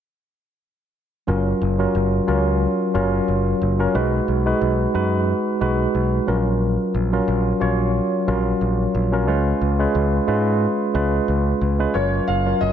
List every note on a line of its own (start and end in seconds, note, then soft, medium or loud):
1.27 1.52 F#1 loud
1.27 1.64 F#3 medium
1.27 1.64 C#4 medium
1.27 1.64 F4 medium
1.27 1.65 A#4 medium
1.62 1.85 F#1 medium
1.79 2.15 F#3 medium
1.79 2.15 C#4 medium
1.79 2.15 F4 medium
1.79 2.16 A#4 medium
1.95 2.19 F#1 medium
2.27 2.65 C#2 medium
2.27 2.77 F#3 medium
2.27 2.78 C#4 medium
2.27 2.78 F4 medium
2.27 2.78 A#4 medium
2.94 3.19 F#1 medium
2.94 3.55 F#3 medium
2.94 3.55 C#4 medium
2.94 3.56 F4 medium
2.94 3.56 A#4 medium
3.28 3.52 F#1 medium
3.62 3.85 F#1 loud
3.79 3.90 F#3 medium
3.79 3.90 C#4 medium
3.79 3.91 F4 medium
3.79 3.91 A#4 medium
3.94 4.19 B1 loud
3.94 4.31 G#3 medium
3.94 4.31 D#4 medium
3.94 4.31 F#4 medium
3.94 4.31 B4 medium
4.28 4.52 B1 medium
4.46 4.82 G#3 medium
4.46 4.82 D#4 medium
4.46 4.82 F#4 medium
4.46 4.82 B4 medium
4.61 4.85 B1 medium
4.94 5.32 F#2 medium
4.94 5.44 G#3 medium
4.94 5.44 D#4 medium
4.94 5.44 F#4 medium
4.94 5.45 B4 medium
5.61 5.85 B1 medium
5.61 6.22 G#3 medium
5.61 6.22 D#4 medium
5.61 6.22 F#4 medium
5.61 6.22 B4 medium
5.95 6.19 B1 medium
6.27 6.76 A#1 medium
6.27 6.94 F#3 medium
6.27 6.94 C#4 medium
6.27 6.95 F4 medium
6.27 6.95 A#4 loud
6.94 7.18 A#1 medium
7.12 7.49 F#3 medium
7.12 7.49 C#4 medium
7.12 7.49 F4 medium
7.12 7.49 A#4 medium
7.28 7.52 A#1 medium
7.60 7.98 A#1 medium
7.60 8.11 F#3 medium
7.60 8.11 C#4 medium
7.60 8.11 F4 medium
7.60 8.11 C#5 medium
8.27 8.52 A#1 loud
8.27 8.89 F#3 medium
8.27 8.89 C#4 medium
8.27 8.89 F4 medium
8.27 8.89 A#4 medium
8.61 8.85 A#1 medium
8.94 9.28 A#1 loud
9.12 9.23 F#3 medium
9.12 9.24 C#4 medium
9.12 9.24 F4 medium
9.12 9.24 A#4 medium
9.27 9.52 C#2 loud
9.27 9.64 G#3 medium
9.27 9.64 C#4 medium
9.27 9.64 F4 medium
9.27 9.65 B4 medium
9.61 9.85 C#2 medium
9.79 10.15 G#3 medium
9.79 10.15 C#4 medium
9.79 10.16 F4 medium
9.79 10.16 B4 medium
9.95 10.19 C#2 loud
10.27 10.65 G#2 medium
10.27 10.77 G#3 medium
10.27 10.78 C#4 medium
10.27 10.78 F4 medium
10.27 10.78 B4 medium
10.94 11.19 C#2 loud
10.94 11.55 G#3 medium
10.94 11.55 C#4 medium
10.94 11.56 F4 medium
10.94 11.56 B4 medium
11.28 11.52 C#2 loud
11.61 11.85 C#2 medium
11.79 11.90 G#3 medium
11.79 11.90 C#4 medium
11.79 11.91 F4 medium
11.79 11.91 B4 medium
11.94 12.19 F#1 loud
11.94 12.31 F#3 medium
11.94 12.31 C#4 medium
11.94 12.31 F4 medium
11.94 12.31 A#4 medium
11.94 12.25 C#5 medium
12.28 12.52 F#1 medium
12.28 12.62 F5 medium
12.46 12.72 F#3 medium
12.46 12.72 C#4 medium
12.46 12.72 F4 medium
12.46 12.72 A#4 medium
12.61 12.72 F#1 medium
12.61 12.72 D#5 medium